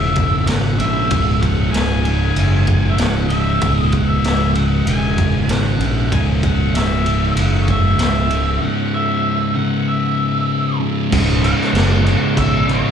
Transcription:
0.00 0.13 E1 medium
0.00 0.81 C#2 medium
0.00 1.10 C#2 medium
0.00 0.77 G#2 medium
0.00 1.09 G#2 medium
0.00 0.77 C#3 loud
0.00 1.13 C#3 medium
0.00 0.47 E5 loud
0.16 0.45 E1 medium
0.16 kick medium
0.16 ride medium
0.47 0.76 G#1 medium
0.47 0.78 F#5 loud
0.47 snare loud
0.47 ride loud
0.77 1.08 A#1 medium
0.77 1.09 G#2 medium
0.77 1.13 C#3 medium
0.77 1.41 E5 loud
0.77 ride medium
0.81 1.09 C#2 medium
1.10 1.69 C#1 medium
1.10 3.33 C#2 medium
1.10 3.28 G#2 medium
1.10 3.29 C#3 loud
1.10 kick loud
1.10 ride loud
1.41 1.74 F#5 loud
1.41 kick medium
1.41 ride medium
1.71 2.32 C#1 medium
1.71 2.02 G#5 loud
1.71 ride loud
1.75 snare loud
2.03 3.65 C#3 medium
2.03 2.93 G#5 loud
2.03 ride medium
2.07 3.61 C#2 medium
2.07 3.60 G#2 medium
2.36 2.94 F#1 medium
2.36 ride medium
2.67 kick medium
2.67 ride medium
2.90 2.97 E5 medium
2.97 3.57 C#1 medium
2.97 3.28 F#5 loud
2.97 snare loud
2.97 ride loud
3.29 3.60 G#2 medium
3.29 3.63 C#3 medium
3.29 3.75 E5 loud
3.29 ride medium
3.33 3.60 C#2 medium
3.60 4.20 C#1 medium
3.60 5.82 C#2 medium
3.60 5.79 G#2 medium
3.60 5.78 C#3 medium
3.60 kick loud
3.60 ride loud
3.75 3.93 D#5 loud
3.92 4.08 F#5 loud
3.92 kick medium
3.92 ride medium
4.08 4.54 E5 medium
4.24 4.82 C#1 medium
4.24 snare loud
4.24 ride medium
4.55 6.10 C#2 medium
4.55 6.11 G#2 medium
4.55 6.13 C#3 medium
4.55 4.87 F#5 medium
4.55 ride medium
4.85 5.15 E1 medium
4.85 5.50 G#5 loud
4.85 ride medium
5.18 5.47 E1 medium
5.18 kick medium
5.18 ride medium
5.48 5.77 G#1 medium
5.48 6.14 F#5 loud
5.48 snare loud
5.48 ride loud
5.78 6.09 A#1 medium
5.78 6.10 G#2 medium
5.78 6.12 C#3 medium
5.78 ride medium
5.82 6.09 C#2 medium
6.09 6.71 C#1 medium
6.09 8.31 C#2 medium
6.09 8.29 G#2 medium
6.09 8.28 C#3 loud
6.09 6.20 G#5 loud
6.09 kick loud
6.09 ride medium
6.43 6.75 F#5 medium
6.43 kick medium
6.43 ride medium
6.73 7.32 C#1 medium
6.73 7.36 E5 medium
6.73 snare loud
6.73 ride loud
7.04 8.60 C#2 medium
7.04 8.60 G#2 medium
7.04 8.63 C#3 medium
7.04 ride medium
7.36 7.95 F#1 medium
7.36 7.62 F#5 loud
7.36 ride medium
7.62 7.69 C#5 medium
7.68 7.98 E5 medium
7.68 kick medium
7.68 ride medium
7.98 8.57 C#1 medium
7.98 8.58 E5 medium
7.98 snare loud
7.98 ride loud
8.28 8.60 C#2 medium
8.28 8.60 G#2 medium
8.28 8.64 C#3 medium
8.28 ride medium
8.60 10.78 C#2 medium
8.60 10.79 G#2 medium
8.60 10.79 C#3 loud
8.60 8.94 F#5 medium
8.94 9.55 E5 medium
9.55 11.11 C#2 medium
9.55 11.10 G#2 medium
9.55 11.09 C#3 medium
9.55 9.87 F#5 medium
9.88 10.77 E5 medium
10.80 11.10 C#2 medium
10.80 11.10 G#2 medium
10.80 11.09 C#3 medium
11.11 11.52 C#1 loud
11.11 12.07 C#2 medium
11.11 11.42 C#2 medium
11.11 11.43 G#2 loud
11.11 12.04 G#2 loud
11.11 11.44 C#3 loud
11.11 12.03 C#3 medium
11.11 kick loud
11.11 crash loud
11.43 11.73 C#2 medium
11.43 11.72 G#2 medium
11.43 11.74 C#3 loud
11.43 12.34 F#5 loud
11.43 crash medium
11.61 snare soft
11.73 12.12 F#1 medium
11.73 12.03 C#2 loud
11.73 12.03 G#2 loud
11.73 12.04 C#3 loud
11.73 snare loud
11.73 crash medium
12.03 12.34 C#2 medium
12.03 12.91 C#2 medium
12.03 12.34 G#2 loud
12.03 12.91 G#2 medium
12.03 12.91 C#3 medium
12.03 12.36 C#3 loud
12.03 crash medium
12.35 12.76 G#1 medium
12.35 12.66 C#2 loud
12.35 12.67 G#2 loud
12.35 12.67 C#3 loud
12.35 12.67 E5 medium
12.35 kick loud
12.35 crash medium
12.66 12.91 C#2 loud
12.66 12.91 G#2 loud
12.66 12.91 C#3 loud
12.66 12.91 C#5 loud
12.66 crash medium

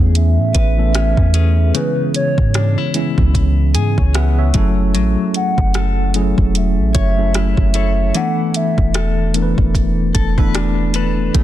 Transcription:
0.00 0.39 E2 loud
0.00 0.78 E3 medium
0.00 0.78 A3 medium
0.00 1.75 A3 medium
0.00 0.78 B3 medium
0.00 0.79 C#4 medium
0.00 1.35 G#4 medium
0.00 1.76 G#4 medium
0.00 1.25 E5 medium
0.15 1.71 E5 loud
0.15 closed hi-hat medium
0.38 0.54 A2 medium
0.54 1.15 A1 loud
0.54 1.35 B4 medium
0.54 kick medium
0.54 closed hi-hat medium
0.78 1.61 E3 medium
0.78 1.61 A3 medium
0.78 1.61 B3 medium
0.78 1.61 C#4 medium
0.78 1.62 A4 medium
0.94 1.34 C#4 medium
0.94 cross-stick loud
0.94 closed hi-hat medium
1.17 1.72 E2 loud
1.17 kick medium
1.34 2.57 C#4 medium
1.34 2.54 G#4 medium
1.34 3.74 B4 medium
1.34 closed hi-hat medium
1.74 4.64 C#3 medium
1.74 2.78 E3 medium
1.74 2.78 G#3 medium
1.74 2.78 B3 medium
1.74 2.79 C#4 medium
1.74 2.79 G#4 medium
1.74 2.12 B4 medium
1.74 closed hi-hat medium
2.14 2.91 C#5 medium
2.14 closed hi-hat medium
2.38 2.76 G#2 loud
2.38 kick loud
2.54 2.78 D4 medium
2.54 cross-stick loud
2.54 closed hi-hat medium
2.78 4.64 E4 medium
2.94 3.79 E3 medium
2.94 3.79 G#3 medium
2.94 3.79 B3 medium
2.94 3.79 C#4 medium
2.94 3.80 E4 medium
2.94 closed hi-hat medium
3.18 3.76 C#2 loud
3.18 kick loud
3.35 kick medium
3.35 closed hi-hat medium
3.74 3.97 G#2 loud
3.74 4.64 G#4 medium
3.74 4.12 G#5 medium
3.74 closed hi-hat medium
3.98 4.52 C#2 loud
3.98 4.14 G#4 medium
3.98 4.14 C#5 medium
3.98 kick medium
4.14 4.64 B3 medium
4.14 4.37 B4 medium
4.14 4.37 E5 medium
4.14 4.36 F#5 medium
4.14 cross-stick loud
4.14 closed hi-hat medium
4.38 4.76 G#4 medium
4.38 4.76 C#5 medium
4.38 4.91 E5 medium
4.54 4.96 F#1 loud
4.54 5.91 F#3 medium
4.54 4.93 F#3 medium
4.54 5.91 A3 medium
4.54 5.91 C#4 medium
4.54 5.91 E4 medium
4.54 5.92 A4 loud
4.54 kick loud
4.54 closed hi-hat medium
4.94 5.17 A1 medium
4.94 8.14 F#3 medium
4.94 closed hi-hat medium
5.34 6.11 F#5 loud
5.34 closed hi-hat medium
5.58 6.35 F#1 loud
5.58 kick loud
5.74 7.75 A4 medium
5.74 cross-stick loud
5.74 closed hi-hat medium
6.14 6.99 F#3 medium
6.14 6.99 A3 medium
6.14 6.99 C#4 medium
6.14 6.99 E4 medium
6.14 7.00 G#4 medium
6.14 closed hi-hat medium
6.38 6.79 E1 loud
6.38 kick medium
6.55 8.18 E5 loud
6.55 closed hi-hat medium
6.78 6.94 A1 loud
6.95 7.55 F#1 loud
6.95 7.75 C#5 medium
6.95 kick medium
6.95 closed hi-hat medium
7.18 8.01 F#3 medium
7.18 8.01 A3 medium
7.18 8.01 C#4 medium
7.18 8.02 E4 medium
7.18 8.02 A4 medium
7.34 7.74 E4 medium
7.34 cross-stick loud
7.34 closed hi-hat medium
7.57 8.12 F#1 loud
7.57 kick medium
7.74 10.54 E4 medium
7.74 8.94 A4 medium
7.74 8.24 C#5 medium
7.74 closed hi-hat medium
8.14 9.18 E3 medium
8.14 11.44 E3 medium
8.14 9.18 A3 medium
8.14 9.19 B3 medium
8.14 9.19 D4 medium
8.14 9.19 A4 medium
8.14 8.58 F#5 loud
8.14 closed hi-hat medium
8.54 9.35 E5 loud
8.54 closed hi-hat medium
8.78 9.55 E1 loud
8.78 kick medium
8.94 10.15 A4 medium
8.94 cross-stick loud
8.94 closed hi-hat medium
9.34 10.19 E3 medium
9.34 10.19 A3 medium
9.34 10.19 B3 medium
9.34 10.19 D4 medium
9.34 9.43 A#4 medium
9.34 closed hi-hat medium
9.42 10.23 B4 medium
9.58 10.12 E1 loud
9.58 kick loud
9.75 kick medium
9.75 closed hi-hat medium
10.15 11.31 E1 loud
10.15 10.38 A4 medium
10.15 kick medium
10.15 closed hi-hat medium
10.38 11.21 E3 medium
10.38 11.21 A3 medium
10.38 11.21 B3 medium
10.38 11.21 D4 medium
10.38 11.22 A4 loud
10.38 10.95 B4 medium
10.38 kick medium
10.55 10.93 D4 medium
10.55 cross-stick loud
10.55 closed hi-hat medium
10.94 11.44 D4 medium
10.94 11.44 A4 medium
10.94 11.44 B4 medium
10.94 closed hi-hat medium
11.34 11.44 A1 loud
11.34 11.44 E3 medium
11.34 11.44 A3 medium
11.34 11.44 B3 medium
11.34 11.44 C#4 medium
11.34 11.44 G#4 medium
11.34 kick loud
11.34 closed hi-hat medium

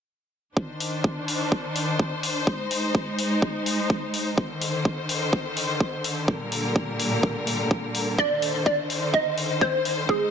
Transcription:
0.57 2.45 D#3 medium
0.57 2.45 D4 medium
0.57 4.34 C5 medium
0.57 kick loud
0.80 open hi-hat medium
1.04 kick loud
1.28 open hi-hat loud
1.52 kick loud
1.76 open hi-hat loud
1.99 kick loud
2.23 open hi-hat loud
2.47 4.36 G#3 medium
2.47 4.36 D#4 medium
2.47 kick loud
2.71 open hi-hat loud
2.95 kick loud
3.19 open hi-hat loud
3.42 kick loud
3.66 open hi-hat loud
3.90 kick loud
4.14 open hi-hat loud
4.38 10.05 D3 medium
4.38 6.26 D#3 medium
4.38 6.26 C5 medium
4.38 kick loud
4.61 open hi-hat loud
4.85 kick loud
5.09 open hi-hat loud
5.33 kick loud
5.57 open hi-hat loud
5.80 kick loud
6.04 open hi-hat loud
6.28 8.17 A#2 medium
6.28 8.17 G3 medium
6.28 8.17 A#4 medium
6.28 kick loud
6.52 open hi-hat loud
6.76 kick loud
7.00 open hi-hat loud
7.23 kick loud
7.47 open hi-hat loud
7.71 kick loud
7.95 open hi-hat loud
8.19 10.07 D#3 medium
8.19 10.31 C5 medium
8.19 8.63 D5 loud
8.19 kick loud
8.42 open hi-hat loud
8.66 9.15 D5 loud
8.66 kick loud
8.90 open hi-hat medium
9.14 9.63 D#5 loud
9.14 kick loud
9.38 open hi-hat loud
9.61 10.10 C5 loud
9.61 kick loud
9.85 open hi-hat medium
10.09 10.31 G#3 medium
10.09 10.31 D#4 medium
10.09 10.31 G#4 medium
10.09 kick loud

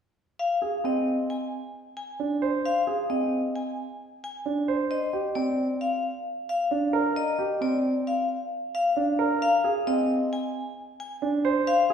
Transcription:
0.39 0.69 F5 medium
0.62 0.91 G#4 soft
0.84 1.14 C4 soft
0.84 1.14 D#5 medium
1.30 1.59 G#5 soft
1.97 2.27 G#5 medium
2.20 2.49 D4 soft
2.42 2.72 C5 medium
2.66 2.95 F5 medium
2.87 3.17 G#4 soft
3.10 3.39 C4 soft
3.10 3.39 D#5 soft
3.56 3.85 G#5 soft
4.24 4.53 G#5 medium
4.46 4.75 D4 medium
4.68 4.98 C5 medium
4.91 5.20 D#5 medium
5.13 5.43 G4 medium
5.35 5.65 C4 soft
5.35 5.65 D5 soft
5.81 6.10 F5 soft
6.49 6.78 F5 medium
6.71 7.00 D4 medium
6.93 7.23 A#4 medium
7.16 7.46 D#5 medium
7.39 7.68 G4 medium
7.61 7.91 C4 soft
7.61 7.91 D5 medium
8.07 8.36 F5 soft
8.75 9.04 F5 medium
8.96 9.26 D4 medium
9.19 9.48 A#4 medium
9.42 9.71 F5 medium
9.64 9.94 G#4 medium
9.87 10.16 C4 soft
9.87 10.16 D#5 medium
10.33 10.62 G#5 medium
11.00 11.29 G#5 medium
11.22 11.52 D4 medium
11.45 11.74 C5 medium
11.67 11.94 F5 medium
11.90 11.94 G#4 medium

